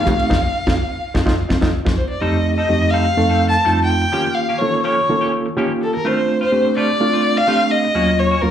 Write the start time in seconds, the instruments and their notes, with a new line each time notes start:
Already playing: violin F5
0.05 slap bass F2, reed electric piano A3 C4 D#4 G4, kick, hi-hat pedal
0.18 muted slap bass stroke, ride
0.30 slap bass F2, reed electric piano C4 D#4 F4, kick, snare
0.67 slap bass F2, reed electric piano C4 D#4 F4, kick, snare
1.14 slap bass F2, reed electric piano C4 D#4 F4, kick, snare
1.26 slap bass F2, reed electric piano C4 D#4 F4, kick, snare
1.49 slap bass F2, reed electric piano C4 D#4 F4, kick, snare
1.61 slap bass F2, reed electric piano C4 D#4 F4, kick, snare
1.85 slap bass F2, reed electric piano C4 D#4 F4, kick, snare
1.97 violin C5
2.10 violin D5
2.20 reed electric piano F2 A3 C4 D#4 G4, clean electric guitar G3 C4 D#4 A4, violin D#5
2.45 muted clean electric guitar stroke
2.56 clean electric guitar C4 D#4 A4, violin D#5
2.69 reed electric piano F2 A3 C4 D#4 G4, muted clean electric guitar stroke
2.82 muted clean electric guitar stroke
2.91 clean electric guitar G3 C4 D#4 A4, violin F5
3.06 muted clean electric guitar stroke
3.17 reed electric piano F2 A3 C4 D#4 A4
3.30 clean electric guitar C4 D#4 A4
3.42 muted clean electric guitar stroke
3.48 violin A5
3.54 muted clean electric guitar stroke
3.65 reed electric piano F2 A3 C4 D#4 F4, clean electric guitar G3 C4 D#4 A4
3.85 violin G5
3.89 muted clean electric guitar stroke
4.02 muted clean electric guitar stroke
4.12 reed electric piano D#3 A#3 C#4 F4 G4, clean electric guitar F3 A#3 C#4 G4
4.34 violin F5, muted clean electric guitar stroke
4.49 clean electric guitar A#3 C#4 G4
4.58 reed electric piano D#3 A#3 C#4 F4 A4, violin C#5, muted clean electric guitar stroke
4.73 muted clean electric guitar stroke
4.82 clean electric guitar F3 A#3 C#4 G4, violin C#5
4.97 muted clean electric guitar stroke
5.09 reed electric piano D#3 A#3 C#4 F4 A4
5.21 clean electric guitar A#3 C#4 G4
5.34 muted clean electric guitar stroke
5.46 muted clean electric guitar stroke
5.57 reed electric piano D#3 A#3 C#4 F4 G4, clean electric guitar F3 A#3 C#4 G4
5.81 violin A4, muted clean electric guitar stroke
5.93 violin A#4, muted clean electric guitar stroke
6.05 clean electric guitar A3 C4 F4, reed electric piano A3 C4 D4 F4, violin C5
6.28 muted clean electric guitar stroke
6.41 clean electric guitar C4 F4, violin C5
6.52 reed electric piano A3 C4 D4 G4, muted clean electric guitar stroke
6.65 muted clean electric guitar stroke
6.77 clean electric guitar A3 C4 F4, violin D5
6.88 muted clean electric guitar stroke
7.00 reed electric piano A3 C4 D4 F4
7.13 clean electric guitar C4 F4
7.24 muted clean electric guitar stroke
7.37 violin F5, muted clean electric guitar stroke
7.47 clean electric guitar A3 C4 F4, reed electric piano A3 C4 D4 G4
7.71 violin D#5, muted clean electric guitar stroke
7.85 muted clean electric guitar stroke
7.95 reed electric piano D#2 F#3 A#3 C#4 F4, clean electric guitar A#3 C#4 F#4
8.19 violin C#5, muted clean electric guitar stroke
8.31 clean electric guitar C#4 F#4
8.42 reed electric piano D#2 F#3 A#3 C#4 F4, violin A#4, muted clean electric guitar stroke